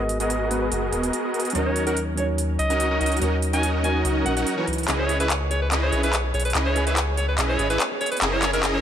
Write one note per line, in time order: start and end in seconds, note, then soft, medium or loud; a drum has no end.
0.00 0.70 G#1 loud
0.00 0.49 G#3 medium
0.00 0.50 B3 medium
0.00 0.52 F#4 medium
0.00 1.57 A#4 medium
0.00 1.57 B4 medium
0.00 0.18 D#5 medium
0.09 closed hi-hat medium
0.20 1.53 B3 medium
0.20 1.53 F#4 medium
0.20 1.53 G#4 medium
0.20 1.53 A#4 medium
0.20 1.53 D#5 medium
0.20 0.49 D#5 medium
0.20 closed hi-hat medium
0.30 closed hi-hat medium
0.49 1.52 G#3 medium
0.49 1.52 B3 medium
0.49 1.53 F#4 medium
0.49 0.58 B4 medium
0.49 closed hi-hat medium
0.62 0.68 B4 medium
0.72 0.91 F#1 loud
0.72 closed hi-hat medium
0.92 1.12 D#1 loud
0.92 closed hi-hat medium
1.03 closed hi-hat medium
1.13 closed hi-hat medium
1.34 closed hi-hat medium
1.40 closed hi-hat medium
1.45 closed hi-hat soft
1.50 2.14 F#3 medium
1.50 closed hi-hat medium
1.54 2.58 D#2 loud
1.54 2.15 C#4 medium
1.54 1.84 C#4 medium
1.54 1.84 D#4 medium
1.54 2.15 D#4 medium
1.54 1.84 F#4 medium
1.54 1.84 A#4 medium
1.54 2.16 A#4 medium
1.54 1.84 D#5 medium
1.54 closed hi-hat medium
1.66 1.85 C#5 medium
1.76 closed hi-hat medium
1.87 1.95 C#4 medium
1.87 1.95 D#4 medium
1.87 1.95 F#4 medium
1.87 2.02 A#4 medium
1.87 1.95 A#4 medium
1.87 1.95 F#5 medium
1.87 closed hi-hat medium
1.97 closed hi-hat medium
2.15 3.18 F#3 medium
2.15 3.19 C#4 medium
2.15 3.20 D#4 medium
2.15 2.26 C#5 medium
2.15 closed hi-hat medium
2.19 3.20 C#5 medium
2.38 closed hi-hat medium
2.59 3.00 C#2 medium
2.59 2.99 D#5 loud
2.59 closed hi-hat medium
2.70 2.88 C#4 loud
2.70 2.88 D#4 medium
2.70 2.88 F#4 medium
2.70 2.88 A#4 medium
2.70 2.88 D#5 loud
2.70 closed hi-hat medium
2.80 closed hi-hat medium
2.91 3.19 C#4 medium
2.91 3.19 D#4 medium
2.91 3.19 F#4 medium
2.91 3.19 A#4 medium
2.91 3.19 D#5 medium
3.01 3.20 C#2 medium
3.01 3.16 D#5 medium
3.01 closed hi-hat soft
3.06 closed hi-hat medium
3.12 closed hi-hat soft
3.17 3.81 F#3 medium
3.17 closed hi-hat medium
3.21 4.04 D#2 loud
3.21 3.81 C#4 medium
3.21 3.36 C#4 medium
3.21 3.36 D#4 medium
3.21 3.82 D#4 medium
3.21 3.36 F#4 medium
3.21 3.36 A#4 medium
3.21 3.83 A#4 medium
3.21 3.36 D#5 medium
3.21 closed hi-hat medium
3.42 closed hi-hat medium
3.53 4.35 C#4 medium
3.53 4.35 D#4 medium
3.53 4.35 F#4 medium
3.53 4.35 A#4 medium
3.53 4.35 D#5 loud
3.53 3.68 G#5 medium
3.53 closed hi-hat medium
3.63 closed hi-hat medium
3.83 4.23 F#3 medium
3.83 4.24 C#4 medium
3.83 4.24 D#4 medium
3.83 4.24 C#5 medium
3.83 4.00 G#5 medium
3.83 closed hi-hat medium
4.05 4.24 C#2 medium
4.05 closed hi-hat medium
4.25 4.45 A#1 medium
4.25 4.54 F#3 medium
4.25 4.55 C#4 medium
4.25 4.55 D#4 medium
4.25 4.55 A#4 medium
4.25 4.33 F#5 medium
4.25 closed hi-hat medium
4.37 4.55 C#4 medium
4.37 4.55 D#4 medium
4.37 4.55 F#4 medium
4.37 4.55 A#4 medium
4.37 4.43 F#5 medium
4.37 4.55 F#5 loud
4.37 closed hi-hat medium
4.47 closed hi-hat medium
4.57 4.85 E3 medium
4.57 4.86 C#4 medium
4.57 4.66 C#4 medium
4.57 4.66 D#4 medium
4.57 4.86 D#4 medium
4.57 4.66 F#4 medium
4.57 4.66 A#4 medium
4.57 4.86 B4 medium
4.57 4.66 C#5 medium
4.67 4.87 C#2 medium
4.67 closed hi-hat soft
4.73 closed hi-hat medium
4.78 closed hi-hat soft
4.83 closed hi-hat medium
4.88 5.91 C#2 loud
4.88 5.17 C#4 medium
4.88 5.17 E4 medium
4.88 5.17 G#4 medium
4.88 5.09 G#4 medium
4.88 5.17 B4 medium
4.88 5.17 D#5 medium
4.88 clap soft
4.88 closed hi-hat medium
4.88 riser medium
4.99 5.29 C#5 medium
4.99 5.18 C#5 medium
5.09 5.40 G#4 medium
5.09 closed hi-hat medium
5.20 5.28 C#4 medium
5.20 5.29 E4 medium
5.20 5.28 G#4 medium
5.20 5.29 B4 medium
5.20 5.35 B4 medium
5.20 6.03 D#5 medium
5.20 5.29 E5 medium
5.20 closed hi-hat medium
5.30 5.61 C#5 loud
5.30 clap medium
5.30 closed hi-hat medium
5.41 5.50 G#4 medium
5.51 5.71 G#4 medium
5.51 5.60 C#5 medium
5.51 closed hi-hat medium
5.62 5.68 B4 medium
5.62 5.82 C#5 medium
5.72 6.01 C#4 medium
5.72 6.01 E4 medium
5.72 5.92 G#4 medium
5.72 6.01 G#4 medium
5.72 6.01 B4 medium
5.72 6.01 D#5 medium
5.72 clap medium
5.72 closed hi-hat medium
5.83 6.13 C#5 medium
5.83 6.01 C#5 medium
5.92 6.33 B1 medium
5.92 6.24 G#4 medium
5.92 closed hi-hat medium
6.03 6.12 C#4 medium
6.03 6.12 E4 medium
6.03 6.12 G#4 medium
6.03 6.12 B4 medium
6.03 6.18 B4 medium
6.03 6.86 D#5 medium
6.03 6.12 E5 medium
6.03 closed hi-hat medium
6.13 6.45 C#5 medium
6.13 clap medium
6.13 closed hi-hat medium
6.24 6.34 G#4 medium
6.34 6.53 B1 medium
6.34 6.55 G#4 medium
6.34 6.43 C#5 medium
6.34 closed hi-hat soft
6.40 closed hi-hat medium
6.45 6.51 B4 medium
6.45 6.65 C#5 medium
6.45 closed hi-hat soft
6.50 closed hi-hat medium
6.55 7.37 C#2 loud
6.55 6.84 C#4 medium
6.55 6.84 E4 medium
6.55 6.75 G#4 medium
6.55 6.84 G#4 medium
6.55 6.84 B4 medium
6.55 6.84 D#5 medium
6.55 clap medium
6.55 closed hi-hat medium
6.66 6.84 C#5 medium
6.66 6.96 C#5 medium
6.76 7.07 G#4 loud
6.76 closed hi-hat medium
6.87 6.95 C#4 medium
6.87 6.95 E4 medium
6.87 6.95 G#4 medium
6.87 7.02 B4 medium
6.87 6.95 B4 medium
6.87 7.70 D#5 medium
6.87 6.95 E5 medium
6.87 closed hi-hat medium
6.97 7.28 C#5 loud
6.97 clap medium
6.97 closed hi-hat medium
7.08 7.17 G#4 medium
7.17 7.38 G#4 medium
7.17 7.26 C#5 medium
7.17 closed hi-hat medium
7.28 7.35 B4 medium
7.28 7.49 C#5 medium
7.38 7.58 B1 medium
7.38 7.67 C#4 medium
7.38 7.67 E4 medium
7.38 7.67 G#4 medium
7.38 7.59 G#4 medium
7.38 7.67 B4 medium
7.38 7.67 D#5 medium
7.38 clap medium
7.38 closed hi-hat medium
7.49 7.68 C#5 medium
7.49 7.80 C#5 medium
7.59 7.78 G#1 medium
7.59 7.91 G#4 loud
7.59 closed hi-hat medium
7.70 7.79 C#4 medium
7.70 7.79 E4 medium
7.70 7.79 G#4 medium
7.70 7.85 B4 loud
7.70 7.79 B4 medium
7.70 8.53 D#5 medium
7.70 7.79 E5 medium
7.70 closed hi-hat medium
7.80 8.11 C#5 loud
7.80 clap medium
7.80 closed hi-hat medium
7.91 8.00 G#4 medium
8.01 8.21 G#4 medium
8.01 8.09 C#5 medium
8.01 closed hi-hat soft
8.06 closed hi-hat medium
8.12 8.18 B4 medium
8.12 8.32 C#5 medium
8.12 closed hi-hat soft
8.17 closed hi-hat medium
8.22 8.81 F#1 loud
8.22 8.51 C#4 medium
8.22 8.51 E4 medium
8.22 8.51 G#4 medium
8.22 8.42 G#4 medium
8.22 8.51 A#4 medium
8.22 8.51 D#5 medium
8.22 clap medium
8.22 closed hi-hat medium
8.32 8.51 C#5 medium
8.32 8.74 C#5 medium
8.42 8.63 G#4 loud
8.42 clap medium
8.42 closed hi-hat medium
8.53 8.62 C#4 medium
8.53 8.62 E4 medium
8.53 8.62 G#4 medium
8.53 8.62 A#4 medium
8.53 8.81 D#5 medium
8.53 8.62 E5 medium
8.53 closed hi-hat medium
8.63 8.81 C#4 medium
8.63 8.81 E4 medium
8.63 8.81 G#4 medium
8.63 8.81 A#4 medium
8.63 8.81 D#5 medium
8.63 clap medium
8.63 closed hi-hat medium
8.74 8.81 C#5 medium